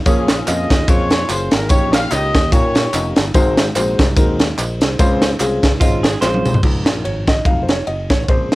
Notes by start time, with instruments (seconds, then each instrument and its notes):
0.06 fingered electric bass A#1, grand piano A#2 A#3 C#4 F4 G#4 C#5, horn section C#4 F4 G#4, kick, ride, tambourine
0.28 snare, clap, ride, tambourine
0.47 fingered electric bass F2, grand piano A#3 C#4 F4 G#4 D#5, horn section G#4 D#5, clap, ride, tambourine
0.70 fingered electric bass D#2, kick, snare, ride, tambourine
0.88 fingered electric bass F2, grand piano A#3 C#4 F4 G#4 C#5, horn section F4 G#4 C#5, kick, ride, tambourine
1.10 snare, ride, tambourine
1.29 fingered electric bass F#1, grand piano A#3 C#4 F4 G#4 C#5, horn section C5, clap, ride, tambourine
1.51 fingered electric bass G#1, horn section A#4, snare, ride, tambourine
1.69 fingered electric bass A#1, grand piano A#2 A#3 C#4 D#4 G4 C#5, horn section G4 C#5, kick, ride, tambourine
1.93 horn section F5, snare, clap, ride, tambourine
2.11 fingered electric bass C#2, grand piano A#3 C#4 D#4 G4 C#5, horn section G4 D#5, clap, ride, tambourine
2.35 fingered electric bass D#2, kick, snare, ride, tambourine
2.52 fingered electric bass A#2, grand piano A#3 C#4 D#4 G4 A#4, horn section G4 C#5, kick, ride, tambourine
2.75 snare, ride, tambourine
2.93 fingered electric bass F1, grand piano A#3 C#4 D#4 G4 D#5, clap, ride, tambourine
3.16 fingered electric bass G1, snare, ride, tambourine
3.34 fingered electric bass G#1, grand piano G#2 G#3 C4 D#4 F#4 C5, kick, ride, tambourine
3.58 snare, clap, ride, tambourine
3.75 fingered electric bass A#1, grand piano G#3 C4 D#4 F#4 C5, clap, ride, tambourine
3.99 fingered electric bass C2, kick, snare, ride, tambourine
4.17 fingered electric bass D#2, grand piano G#3 C4 D#4 F#4 A#4, kick, ride, tambourine
4.39 snare, ride, tambourine
4.58 fingered electric bass A#1, grand piano C5 D#5, clap, ride, tambourine
4.81 fingered electric bass C2, grand piano G#4 C5, snare, ride, tambourine
4.99 fingered electric bass C#2, grand piano C#3 G#3 C4 C#4 F4 C5, kick, ride, tambourine
5.22 snare, ride, tambourine
5.40 fingered electric bass C2, grand piano G#3 C4 C#4 F4 G#4, clap, ride, tambourine
5.63 fingered electric bass C#2, kick, snare, ride, tambourine
5.80 fingered electric bass G#1, grand piano G#3 C4 C#4 F4 D#5, clean electric guitar F4, kick, ride, tambourine
6.03 clean electric guitar G#4, snare, ride, tambourine
6.21 fingered electric bass A#1, grand piano G#3 C4 C#4 F4 C5, clean electric guitar C5, snare, clap, tambourine
6.34 high tom
6.45 fingered electric bass C2, mid tom, tambourine
6.54 floor tom
6.63 fingered electric bass C#2, grand piano F3 C4 D#4, kick, crash
6.86 fingered electric bass A#1, snare, ride
7.04 fingered electric bass G#1, grand piano C#5, ride
7.28 grand piano D#5, kick, snare, ride
7.45 fingered electric bass F1, grand piano F#3 A3 D#4 F5, kick, ride
7.63 grand piano C5
7.69 grand piano C#5, snare, ride
7.87 fingered electric bass F#1, grand piano D#5, ride
8.10 fingered electric bass A1, grand piano C#5, kick, snare, ride
8.24 grand piano C#5
8.28 fingered electric bass A#1, grand piano C#3 G#3 C4 C5, kick, ride
8.52 snare